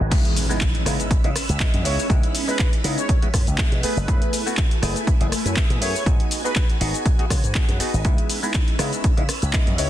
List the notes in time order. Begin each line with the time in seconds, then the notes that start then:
0.00 G#1
0.11 C#2 G#3 B3 C#4 D#4 E4 B4 E6, kick, closed hi-hat, crash, impact, cabasa
0.25 closed hi-hat
0.36 open hi-hat, cabasa
0.49 G#3 B3 D#4 E4, cabasa
0.61 kick, clap, closed hi-hat, cabasa
0.75 closed hi-hat
0.86 C#3 G#3 B3 D#4 E4, cross-stick, open hi-hat, cabasa
1.00 closed hi-hat, cabasa
1.11 muted slap bass stroke, kick, closed hi-hat, cabasa
1.24 C#3 G#3 B3 D#4 E4, closed hi-hat
1.36 cross-stick, open hi-hat, cabasa
1.49 C#2, closed hi-hat, cabasa
1.60 G#3 B3 D#4 E4, kick, clap, closed hi-hat, cabasa
1.74 F#2, closed hi-hat
1.85 C#2 G#3 B3 D#4 E4 C#5, open hi-hat, cabasa
1.99 cabasa
2.09 C#2 G#3 B3 D#4 E4, kick, closed hi-hat, cabasa
2.23 closed hi-hat
2.35 open hi-hat, cabasa
2.48 G#3 B3 D#4 E4 B4, cabasa
2.59 kick, clap, closed hi-hat, cabasa
2.73 closed hi-hat
2.84 C#3 G#3 B3 D#4 E4, open hi-hat, cabasa
2.98 C#5, closed hi-hat, cabasa
3.09 kick, closed hi-hat, cabasa
3.22 G#3 B3 D#4 E4, muted slap bass stroke, closed hi-hat
3.34 F#2, kick, cross-stick, open hi-hat, cabasa
3.47 C#2, closed hi-hat, cabasa
3.58 G#3 B3 D#4 E4, kick, clap, closed hi-hat, cabasa
3.72 B2, closed hi-hat
3.83 A3 B3 E4 G#4 B4 G#5, muted slap bass stroke, open hi-hat, cabasa
3.97 F#1, cabasa
4.08 F#2 A3 B3 E4 G#4, kick, closed hi-hat, cabasa
4.22 closed hi-hat
4.33 open hi-hat, cabasa
4.46 A3 B3 E4 F#4, cabasa
4.57 kick, clap, closed hi-hat, cabasa
4.71 closed hi-hat
4.82 F#1 A3 B3 E4 G#4, cross-stick, open hi-hat, cabasa
4.96 closed hi-hat, cabasa
5.07 muted slap bass stroke, kick, closed hi-hat, cabasa
5.20 F#1 A3 B3 E4 G#4, closed hi-hat
5.32 cross-stick, open hi-hat, cabasa
5.45 F#2, closed hi-hat, cabasa
5.56 A3 B3 E4 G#4, kick, clap, closed hi-hat, cabasa
5.70 B2, closed hi-hat
5.81 F#2 A3 B3 E4 G#4 C#5, open hi-hat, cabasa
5.96 cabasa
6.06 G#2 B3 D#4 F#4 G#4 B4, kick, closed hi-hat, cabasa
6.20 closed hi-hat
6.31 open hi-hat, cabasa
6.44 B3 D#4 F#4 G#4 B4, cabasa
6.56 kick, clap, closed hi-hat, cabasa
6.70 closed hi-hat
6.80 G#1 B3 D#4 F#4 G#4, open hi-hat, cabasa
6.94 closed hi-hat, cabasa
7.06 kick, closed hi-hat, cabasa
7.19 B3 D#4 F#4 G#4, muted slap bass stroke, closed hi-hat
7.30 C#3, kick, cross-stick, open hi-hat, cabasa
7.44 G#2, closed hi-hat, cabasa
7.55 B3 D#4 F#4 G#4, kick, clap, closed hi-hat, cabasa
7.69 F#2, closed hi-hat
7.80 B3 D#4 F#4 G#4, muted slap bass stroke, open hi-hat, cabasa
7.94 G#1, cabasa
8.04 C#2 G#3 B3 C#4 D#4 E4 E6, kick, closed hi-hat, cabasa
8.18 closed hi-hat
8.30 open hi-hat, cabasa
8.43 G#3 B3 D#4 E4, cabasa
8.54 kick, clap, closed hi-hat, cabasa
8.68 closed hi-hat
8.79 C#3 G#3 B3 D#4 E4, cross-stick, open hi-hat, cabasa
8.93 closed hi-hat, cabasa
9.04 muted slap bass stroke, kick, closed hi-hat, cabasa
9.17 C#3 G#3 B3 D#4 E4, closed hi-hat
9.29 cross-stick, open hi-hat, cabasa
9.42 C#2, closed hi-hat, cabasa
9.53 G#3 B3 D#4 E4, kick, clap, closed hi-hat, cabasa
9.67 F#2, closed hi-hat
9.78 C#2 G#3 B3 D#4 E4 C#5, open hi-hat, cabasa